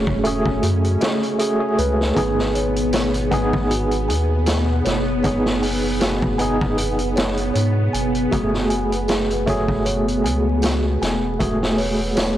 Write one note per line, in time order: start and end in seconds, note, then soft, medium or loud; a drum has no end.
0.00 0.62 E1 medium
0.00 0.20 A3 medium
0.00 2.18 C#4 medium
0.00 0.20 F#4 medium
0.00 0.21 G#4 medium
0.00 0.21 C#5 loud
0.07 kick loud
0.24 1.36 A3 loud
0.24 1.36 F#4 medium
0.24 1.37 G#4 loud
0.24 0.61 G#5 medium
0.24 closed hi-hat medium
0.46 kick medium
0.63 0.97 F#2 medium
0.63 0.99 F#4 medium
0.63 closed hi-hat medium
0.84 closed hi-hat soft
1.01 1.24 D#5 medium
1.01 snare loud
1.01 closed hi-hat medium
1.23 closed hi-hat soft
1.39 1.55 A3 medium
1.39 1.56 F#4 medium
1.39 1.76 G#4 medium
1.39 1.56 G#4 loud
1.39 closed hi-hat medium
1.59 2.12 A3 medium
1.59 2.12 F#4 medium
1.59 2.12 G#4 medium
1.78 2.12 C#2 medium
1.78 2.13 B4 medium
1.78 closed hi-hat medium
2.01 snare soft
2.15 4.10 G#1 medium
2.15 3.27 B3 medium
2.15 12.38 B3 medium
2.15 3.28 D#4 medium
2.15 2.53 G#4 loud
2.15 3.28 G#4 medium
2.15 kick loud
2.15 closed hi-hat medium
2.39 snare soft
2.55 2.90 C#5 loud
2.55 closed hi-hat medium
2.76 closed hi-hat soft
2.93 3.28 C#5 loud
2.93 snare loud
2.93 closed hi-hat medium
2.93 tambourine medium
3.14 closed hi-hat soft
3.31 5.19 B3 loud
3.31 5.20 D#4 medium
3.31 5.21 G#4 loud
3.31 3.68 G#5 medium
3.31 kick medium
3.31 closed hi-hat medium
3.53 kick loud
3.70 4.07 F#4 medium
3.70 closed hi-hat medium
3.91 closed hi-hat soft
4.08 4.82 D#2 medium
4.08 4.45 G#5 medium
4.08 closed hi-hat medium
4.46 4.83 G#4 loud
4.46 snare loud
4.46 closed hi-hat medium
4.46 tambourine medium
4.85 7.52 F#1 medium
4.85 5.20 C#5 loud
4.85 snare medium
4.85 closed hi-hat medium
5.23 6.35 B3 medium
5.23 6.36 D#4 medium
5.23 6.36 G#4 medium
5.23 5.58 C#5 loud
5.23 kick loud
5.23 closed hi-hat loud
5.46 snare medium
5.62 5.99 G#5 medium
5.62 open hi-hat medium
6.00 6.37 F#4 medium
6.00 snare loud
6.00 closed hi-hat medium
6.00 tambourine medium
6.22 kick loud
6.38 8.27 B3 loud
6.38 8.28 D#4 medium
6.38 8.29 G#4 loud
6.38 6.76 G#5 medium
6.38 closed hi-hat medium
6.61 kick loud
6.77 7.14 G#4 loud
6.77 closed hi-hat medium
6.99 closed hi-hat soft
7.16 7.51 C#5 loud
7.16 snare loud
7.16 closed hi-hat medium
7.37 closed hi-hat soft
7.54 7.89 G#2 medium
7.54 7.89 C#5 loud
7.54 closed hi-hat medium
7.54 tambourine medium
7.93 8.28 F#1 medium
7.93 8.30 G#5 medium
7.93 closed hi-hat medium
8.15 closed hi-hat soft
8.31 10.26 F#1 medium
8.31 9.43 A3 medium
8.31 8.68 F#4 medium
8.31 9.44 F#4 medium
8.31 9.44 G#4 loud
8.31 kick loud
8.31 closed hi-hat medium
8.54 snare soft
8.70 9.07 G#5 medium
8.70 closed hi-hat medium
8.92 closed hi-hat soft
9.08 9.45 G#4 loud
9.08 snare loud
9.08 closed hi-hat medium
9.08 tambourine medium
9.31 closed hi-hat soft
9.46 11.35 A3 loud
9.46 11.36 F#4 medium
9.46 11.36 G#4 loud
9.46 9.82 C#5 medium
9.46 kick medium
9.46 closed hi-hat medium
9.68 kick loud
9.85 10.21 C#5 loud
9.85 closed hi-hat medium
10.08 closed hi-hat soft
10.24 10.98 C#2 medium
10.24 10.61 G#5 medium
10.24 closed hi-hat medium
10.62 10.99 F#4 medium
10.62 snare loud
10.62 closed hi-hat medium
10.62 tambourine medium
11.02 12.38 E1 medium
11.02 11.38 G#5 medium
11.02 snare medium
11.02 closed hi-hat medium
11.39 12.38 A3 medium
11.39 12.38 F#4 medium
11.39 11.76 G#4 loud
11.39 12.38 G#4 medium
11.39 kick loud
11.39 closed hi-hat medium
11.63 snare medium
11.77 12.13 C#5 loud
11.77 open hi-hat medium
12.16 12.38 C#5 loud
12.16 snare loud
12.16 closed hi-hat medium
12.16 tambourine medium